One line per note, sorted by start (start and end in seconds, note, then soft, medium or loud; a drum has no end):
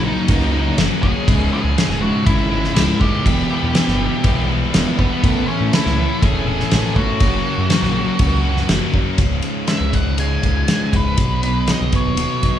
0.00 0.12 A#1 loud
0.00 0.29 F#2 loud
0.00 0.30 C#3 loud
0.04 0.29 F#2 medium
0.04 0.29 C#3 medium
0.04 0.28 F#3 medium
0.04 0.29 A#3 medium
0.04 0.29 C#4 medium
0.04 0.75 D#4 medium
0.04 0.30 F#4 medium
0.04 0.75 D#5 medium
0.28 0.69 C#2 loud
0.28 0.77 F#2 medium
0.28 0.77 C#3 medium
0.28 0.55 F#3 medium
0.28 0.54 A#3 medium
0.28 0.54 C#4 medium
0.28 0.53 F#4 medium
0.28 kick loud
0.28 crash medium
0.55 1.05 F#2 medium
0.55 1.05 C#3 medium
0.55 0.77 F#3 medium
0.55 0.78 A#3 medium
0.55 0.79 C#4 medium
0.55 0.80 F#4 medium
0.78 0.88 F#1 medium
0.78 1.01 F#2 medium
0.78 1.02 C#3 medium
0.78 1.05 F#3 medium
0.78 1.04 A#3 medium
0.78 1.03 C#4 medium
0.78 1.02 F#4 medium
0.78 snare loud
0.78 crash medium
1.02 1.13 D#1 loud
1.02 1.26 F#2 medium
1.02 1.27 C#3 loud
1.02 1.28 F#3 medium
1.02 1.28 A#3 medium
1.02 1.27 C#4 medium
1.02 1.27 F#4 medium
1.02 1.49 G#4 medium
1.02 1.49 G#5 loud
1.02 kick medium
1.27 1.48 C#1 medium
1.27 1.75 C#2 medium
1.27 1.76 G#2 medium
1.27 1.53 C#3 loud
1.27 1.52 G#3 loud
1.27 1.52 E4 loud
1.27 kick loud
1.27 crash medium
1.52 1.76 C#3 medium
1.52 1.77 G#3 medium
1.52 1.78 E4 medium
1.52 1.99 G#4 medium
1.52 2.01 G#5 loud
1.64 1.75 C#2 medium
1.76 2.26 C#2 loud
1.76 2.24 G#2 medium
1.76 2.01 C#3 loud
1.76 2.01 G#3 loud
1.76 2.00 E4 loud
1.76 snare loud
1.76 crash medium
1.88 2.09 E1 medium
1.88 snare soft
2.00 2.25 C#2 medium
2.00 2.25 G#2 medium
2.00 2.24 C#3 medium
2.00 2.26 G#3 medium
2.00 2.27 E4 medium
2.00 2.25 F#4 medium
2.00 2.25 F#5 medium
2.25 2.67 G#1 medium
2.25 2.74 C#2 medium
2.25 2.50 G#2 medium
2.25 2.50 C#3 medium
2.25 2.49 G#3 medium
2.25 2.73 E4 medium
2.25 2.49 E4 medium
2.25 2.72 E5 medium
2.25 kick loud
2.25 crash medium
2.49 3.01 C#2 medium
2.49 2.74 G#2 medium
2.49 2.75 C#3 medium
2.49 2.76 G#3 medium
2.49 2.77 E4 medium
2.64 snare soft
2.75 2.86 C#1 medium
2.75 2.99 C#2 medium
2.75 3.24 G#2 medium
2.75 3.01 C#3 medium
2.75 3.00 G#3 medium
2.75 2.98 E4 medium
2.75 2.99 E4 medium
2.75 3.01 E5 medium
2.75 snare loud
2.75 crash medium
3.00 3.11 D#1 loud
3.00 3.24 C#2 medium
3.00 3.24 G#2 loud
3.00 3.25 C#3 medium
3.00 3.25 G#3 medium
3.00 3.26 E4 medium
3.00 4.45 G4 medium
3.00 4.45 G5 medium
3.00 kick medium
3.24 3.46 E1 loud
3.24 3.73 E2 loud
3.24 3.74 B2 loud
3.24 3.53 E3 loud
3.24 3.51 G3 loud
3.24 3.50 B3 loud
3.24 3.50 E4 loud
3.24 kick loud
3.24 crash medium
3.50 3.75 E3 medium
3.50 3.74 G3 medium
3.50 3.75 B3 medium
3.50 3.76 E4 medium
3.63 3.73 E2 medium
3.74 4.24 E2 medium
3.74 4.24 B2 medium
3.74 4.01 E3 medium
3.74 3.99 G3 loud
3.74 3.99 B3 loud
3.74 3.99 E4 loud
3.74 snare loud
3.74 crash medium
3.88 4.08 G1 loud
3.88 snare soft
3.99 4.23 E2 medium
3.99 4.24 B2 medium
3.99 4.22 E3 medium
3.99 4.23 G3 medium
3.99 4.24 B3 medium
3.99 4.25 E4 medium
4.23 4.64 B1 loud
4.23 4.73 E2 medium
4.23 4.73 B2 medium
4.23 4.48 E3 medium
4.23 4.48 G3 medium
4.23 4.47 B3 medium
4.23 4.46 E4 medium
4.23 kick loud
4.23 crash medium
4.47 4.99 E2 medium
4.47 4.99 B2 medium
4.47 4.71 E3 medium
4.47 4.72 G3 medium
4.47 4.73 B3 medium
4.47 4.74 E4 medium
4.72 4.84 E1 medium
4.72 4.97 E2 medium
4.72 4.97 B2 loud
4.72 4.99 E3 medium
4.72 4.98 G3 medium
4.72 4.97 B3 medium
4.72 4.96 E4 medium
4.72 snare loud
4.72 crash medium
4.97 5.09 E1 loud
4.97 5.22 E2 medium
4.97 5.22 B2 loud
4.97 5.22 E3 medium
4.97 5.22 G3 medium
4.97 5.22 B3 medium
4.97 5.45 B3 medium
4.97 5.21 E4 medium
4.97 5.50 B4 medium
4.97 kick medium
5.22 5.44 A1 loud
5.22 5.71 A2 loud
5.22 5.71 E3 loud
5.22 5.48 A3 loud
5.22 5.48 C#4 loud
5.22 5.47 E4 loud
5.22 5.46 A4 loud
5.22 kick loud
5.22 crash medium
5.47 5.72 A3 medium
5.47 5.71 C#4 medium
5.47 5.73 C#4 medium
5.47 5.73 E4 medium
5.47 5.74 A4 medium
5.47 5.71 C#5 medium
5.61 5.71 A2 medium
5.72 6.22 A2 loud
5.72 6.22 E3 medium
5.72 5.98 A3 loud
5.72 5.98 C#4 loud
5.72 6.19 E4 medium
5.72 5.96 E4 loud
5.72 5.95 A4 loud
5.72 6.24 E5 loud
5.72 snare loud
5.72 crash medium
5.86 6.06 C#2 medium
5.86 snare soft
5.97 6.21 A2 medium
5.97 6.22 E3 medium
5.97 6.20 A3 medium
5.97 6.21 C#4 medium
5.97 6.21 E4 medium
5.97 6.22 A4 medium
6.21 6.63 E1 loud
6.21 6.71 A2 loud
6.21 6.71 E3 medium
6.21 6.46 A3 medium
6.21 6.46 C#4 medium
6.21 6.45 E4 medium
6.21 6.92 G#4 medium
6.21 6.45 A4 medium
6.21 6.96 G#5 loud
6.21 kick loud
6.21 crash medium
6.46 6.97 A2 medium
6.46 6.97 E3 medium
6.46 6.68 A3 medium
6.46 6.70 C#4 medium
6.46 6.70 E4 medium
6.46 6.71 A4 medium
6.60 snare soft
6.70 6.82 A1 loud
6.70 6.96 A2 medium
6.70 6.96 E3 medium
6.70 6.96 A3 medium
6.70 6.96 C#4 medium
6.70 6.95 E4 medium
6.70 6.94 A4 medium
6.70 snare loud
6.70 crash medium
6.95 7.06 G1 loud
6.95 7.20 A2 loud
6.95 7.20 E3 medium
6.95 7.20 A3 medium
6.95 7.21 C#4 medium
6.95 7.19 E4 medium
6.95 8.66 F#4 medium
6.95 7.19 A4 medium
6.95 8.66 F#5 loud
6.95 kick medium
7.20 7.41 F#1 loud
7.20 7.68 F#2 loud
7.20 7.68 C#3 loud
7.20 7.46 F#3 loud
7.20 7.46 A#3 loud
7.20 7.45 C#4 loud
7.20 7.44 F#4 loud
7.20 kick loud
7.20 crash medium
7.45 7.69 F#3 medium
7.45 7.70 A#3 medium
7.45 7.70 C#4 medium
7.45 7.71 F#4 medium
7.58 7.68 F#2 medium
7.69 8.19 F#2 loud
7.69 8.20 C#3 loud
7.69 7.96 F#3 loud
7.69 7.95 A#3 loud
7.69 7.94 C#4 loud
7.69 7.94 F#4 loud
7.69 snare loud
7.69 crash medium
7.82 8.03 A#1 loud
7.82 snare soft
7.95 8.19 F#2 medium
7.95 8.19 C#3 medium
7.95 8.17 F#3 medium
7.95 8.19 A#3 medium
7.95 8.19 C#4 medium
7.95 8.20 F#4 medium
8.18 8.60 C#2 loud
8.18 8.69 F#2 medium
8.18 8.69 C#3 loud
8.18 8.45 F#3 medium
8.18 8.44 A#3 medium
8.18 8.43 C#4 medium
8.18 8.43 F#4 medium
8.18 kick loud
8.18 crash medium
8.44 8.96 F#2 medium
8.44 8.95 C#3 medium
8.44 8.67 F#3 medium
8.44 8.68 A#3 medium
8.44 8.69 C#4 medium
8.44 8.70 F#4 loud
8.57 snare soft
8.68 8.79 F#1 loud
8.68 8.93 F#2 medium
8.68 8.93 C#3 medium
8.68 8.95 F#3 medium
8.68 8.94 A#3 medium
8.68 8.93 C#4 medium
8.68 8.92 F#4 medium
8.68 snare loud
8.68 crash medium
8.93 9.04 D#1 loud
8.93 9.18 F#2 medium
8.93 9.18 C#3 loud
8.93 9.19 F#3 medium
8.93 9.18 A#3 medium
8.93 9.18 C#4 medium
8.93 9.17 F#4 medium
8.93 kick medium
9.18 9.39 C#1 medium
9.18 9.42 C#2 medium
9.18 10.44 C#2 medium
9.18 9.43 G#2 loud
9.18 9.44 C#3 loud
9.18 kick loud
9.18 ride medium
9.42 9.67 C#2 medium
9.42 9.68 G#2 medium
9.42 10.42 C#3 medium
9.42 9.68 C#3 medium
9.42 ride medium
9.67 9.93 C#2 medium
9.67 9.93 G#2 medium
9.67 9.94 C#3 medium
9.67 10.17 G#3 medium
9.67 9.94 E5 medium
9.67 snare loud
9.67 ride medium
9.81 10.01 C#2 medium
9.93 10.17 C#2 medium
9.93 10.18 G#2 medium
9.93 10.19 C#3 medium
9.93 10.92 E4 medium
9.93 10.19 F#5 medium
9.93 kick medium
9.93 ride medium
10.06 10.37 C#2 medium
10.18 10.43 C#2 medium
10.18 10.43 G#2 medium
10.18 10.44 C#3 loud
10.18 10.67 G#3 medium
10.18 10.96 G#5 medium
10.18 ride medium
10.43 10.64 C#2 medium
10.43 10.67 C#2 medium
10.43 10.67 G#2 medium
10.43 11.19 C#3 medium
10.43 10.68 C#3 medium
10.43 kick medium
10.43 ride medium
10.68 10.92 C#2 medium
10.68 10.93 G#2 medium
10.68 10.93 C#3 loud
10.68 11.19 G#3 medium
10.68 snare loud
10.68 ride medium
10.92 11.13 C#1 medium
10.92 11.17 C#2 medium
10.92 11.17 G#2 medium
10.92 11.17 C#3 medium
10.92 11.18 E4 medium
10.92 11.72 B4 medium
10.92 kick medium
10.92 ride medium
11.17 11.69 B1 medium
11.17 11.42 B2 medium
11.17 12.43 B2 medium
11.17 11.43 F#3 medium
11.17 11.44 B3 loud
11.17 kick loud
11.17 ride medium
11.43 11.67 B2 medium
11.43 11.68 F#3 medium
11.43 11.69 B3 medium
11.43 12.42 D#4 medium
11.43 ride medium
11.67 11.91 B2 medium
11.67 11.92 F#3 medium
11.67 11.94 B3 medium
11.67 12.17 F#4 medium
11.67 11.95 D#5 medium
11.67 snare loud
11.67 ride medium
11.81 11.91 B1 medium
11.92 12.17 B2 medium
11.92 12.17 F#3 medium
11.92 12.18 B3 medium
11.92 12.59 B4 medium
11.92 12.59 C#5 medium
11.92 kick medium
11.92 ride medium
12.06 12.26 D#1 medium
12.17 12.42 B2 medium
12.17 12.42 F#3 medium
12.17 12.43 B3 medium
12.17 12.59 F#4 medium
12.17 ride medium
12.43 12.59 B2 medium
12.43 12.59 F#3 medium
12.43 12.59 B3 medium
12.43 12.59 D#4 medium
12.43 kick medium
12.43 ride medium